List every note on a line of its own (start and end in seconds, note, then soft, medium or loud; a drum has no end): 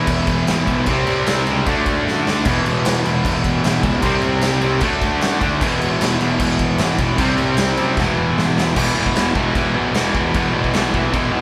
0.00 0.47 E2 medium
0.00 0.65 E2 medium
0.00 0.47 B2 medium
0.00 0.67 B2 loud
0.00 0.47 E3 medium
0.00 0.65 E3 loud
0.07 0.43 E1 loud
0.07 kick loud
0.07 crash medium
0.27 kick medium
0.27 crash medium
0.47 0.65 G#1 medium
0.47 0.86 E2 medium
0.47 0.87 B2 medium
0.47 0.88 E3 loud
0.47 snare loud
0.47 crash medium
0.66 0.86 B1 loud
0.66 0.87 E2 medium
0.66 0.85 B2 medium
0.66 0.85 E3 medium
0.66 kick medium
0.66 crash medium
0.86 1.04 C2 loud
0.86 1.64 C3 medium
0.86 1.65 G3 medium
0.86 1.66 C4 medium
0.86 kick loud
0.86 crash medium
1.07 1.25 C2 medium
1.07 crash medium
1.26 1.45 C2 loud
1.26 snare loud
1.26 crash medium
1.47 1.65 C#2 loud
1.47 1.67 C3 medium
1.47 1.66 G3 medium
1.47 1.65 C4 medium
1.47 crash medium
1.66 2.02 D2 loud
1.66 2.44 D3 medium
1.66 2.45 A3 medium
1.66 2.45 D4 medium
1.66 kick loud
1.66 crash medium
1.86 kick medium
1.86 crash medium
2.07 2.24 F#2 medium
2.07 snare medium
2.27 2.44 D2 medium
2.27 2.45 D3 medium
2.27 2.45 A3 medium
2.27 2.45 D4 medium
2.27 snare loud
2.45 2.63 E1 loud
2.45 3.82 E2 loud
2.45 3.83 B2 loud
2.45 kick loud
2.45 crash loud
2.49 3.82 E3 loud
2.66 2.83 E1 medium
2.66 crash medium
2.85 3.03 E1 loud
2.85 snare loud
2.85 crash loud
3.05 3.22 E1 medium
3.05 3.63 E2 medium
3.05 3.64 B2 medium
3.05 3.63 E3 medium
3.05 crash medium
3.24 3.60 E1 loud
3.24 kick loud
3.24 crash medium
3.44 kick medium
3.44 crash medium
3.64 3.82 G#1 medium
3.64 4.02 E2 medium
3.64 4.02 B2 medium
3.64 4.03 E3 loud
3.64 snare loud
3.64 crash medium
3.83 4.01 C#2 loud
3.83 4.03 E2 medium
3.83 4.03 B2 medium
3.83 4.02 E3 medium
3.83 kick loud
3.83 crash medium
4.02 4.21 C2 medium
4.02 4.81 C3 loud
4.02 4.82 G3 loud
4.02 kick loud
4.02 crash loud
4.07 4.83 C4 loud
4.22 4.41 C2 medium
4.22 crash medium
4.41 4.60 C2 loud
4.41 snare loud
4.41 crash medium
4.61 4.80 C2 loud
4.61 4.79 C3 medium
4.61 4.81 G3 medium
4.61 4.80 C4 medium
4.61 crash medium
4.81 5.17 D2 loud
4.81 5.59 D3 medium
4.81 5.60 A3 medium
4.81 kick loud
4.81 crash medium
4.85 5.61 D4 loud
5.01 kick loud
5.01 crash medium
5.21 5.39 F#2 medium
5.21 snare loud
5.21 crash medium
5.41 5.59 D2 loud
5.41 5.61 D3 medium
5.41 5.61 A3 medium
5.41 5.60 D4 medium
5.41 kick medium
5.41 crash medium
5.60 5.79 E1 medium
5.60 6.97 E2 loud
5.60 6.98 B2 loud
5.60 kick loud
5.60 crash loud
5.64 6.98 E3 loud
5.80 5.98 E1 medium
5.80 crash medium
6.00 6.18 E1 loud
6.00 snare loud
6.00 crash loud
6.19 6.37 E1 loud
6.19 6.79 E2 medium
6.19 6.79 B2 medium
6.19 6.82 E3 medium
6.19 crash medium
6.40 6.75 E1 loud
6.40 kick loud
6.40 crash loud
6.59 kick loud
6.59 crash medium
6.78 6.96 G#1 medium
6.78 7.18 E2 medium
6.78 7.18 B2 medium
6.78 snare loud
6.78 crash medium
6.82 7.19 E3 medium
6.98 7.17 E1 medium
6.98 7.16 B2 medium
6.98 7.18 E3 medium
6.98 kick medium
6.98 crash medium
7.02 7.19 E2 medium
7.17 7.36 C2 medium
7.17 7.95 C3 medium
7.17 7.97 G3 loud
7.17 kick loud
7.17 crash loud
7.21 7.98 C4 loud
7.38 7.57 C2 medium
7.38 crash medium
7.57 7.76 C2 loud
7.57 snare loud
7.57 crash medium
7.77 7.96 F#2 loud
7.77 7.98 C3 medium
7.77 7.98 G3 medium
7.77 7.97 C4 medium
7.77 crash medium
7.96 8.33 E1 loud
7.96 8.74 E2 medium
7.96 8.75 B2 medium
7.96 kick loud
7.96 snare medium
8.00 8.75 E3 medium
8.37 8.55 G#1 medium
8.37 snare medium
8.56 8.75 E1 medium
8.56 8.76 B2 medium
8.56 8.75 E3 medium
8.56 snare loud
8.60 8.76 E2 medium
8.75 8.95 E1 loud
8.75 8.94 E2 loud
8.75 8.94 B2 loud
8.75 8.96 E3 loud
8.75 kick loud
8.75 crash loud
8.75 crash medium
8.95 9.14 E1 medium
8.95 9.15 E2 medium
8.95 9.15 B2 medium
8.95 9.17 E3 medium
9.06 kick medium
9.15 9.34 E1 loud
9.15 9.34 E2 loud
9.15 9.34 B2 medium
9.15 9.36 E3 loud
9.15 snare loud
9.15 crash medium
9.34 9.54 E1 loud
9.34 9.53 E2 medium
9.34 9.54 B2 medium
9.34 9.55 E3 medium
9.34 kick loud
9.40 9.94 E2 medium
9.54 9.74 E1 loud
9.54 9.73 E2 medium
9.54 9.74 B2 medium
9.54 9.74 E3 loud
9.54 kick loud
9.54 crash medium
9.74 9.94 B1 loud
9.74 9.93 E2 medium
9.74 9.93 B2 medium
9.74 9.94 E3 medium
9.94 10.14 E1 medium
9.94 10.13 E2 loud
9.94 10.14 B2 medium
9.94 10.14 E3 loud
9.94 snare loud
9.94 crash medium
10.14 10.33 E1 loud
10.14 10.31 E2 medium
10.14 10.33 B2 medium
10.14 10.33 E3 loud
10.14 kick loud
10.33 10.53 E1 medium
10.33 10.52 E2 loud
10.33 10.53 B2 loud
10.33 10.54 E3 loud
10.33 kick loud
10.33 crash medium
10.53 10.73 E1 medium
10.53 10.72 E2 medium
10.53 10.73 B2 medium
10.53 10.73 E3 medium
10.64 kick medium
10.73 11.12 B1 loud
10.73 10.92 E2 loud
10.73 10.92 B2 loud
10.73 10.93 E3 medium
10.73 snare loud
10.73 crash medium
10.93 11.10 E2 medium
10.93 11.11 B2 medium
10.93 11.12 E3 medium
10.93 kick medium
11.12 11.32 E1 loud
11.12 11.31 E2 medium
11.12 11.31 B2 medium
11.12 11.32 E3 loud
11.12 kick loud
11.12 crash medium
11.32 11.41 B1 medium
11.32 11.41 E2 medium
11.32 11.41 B2 medium
11.32 11.41 E3 medium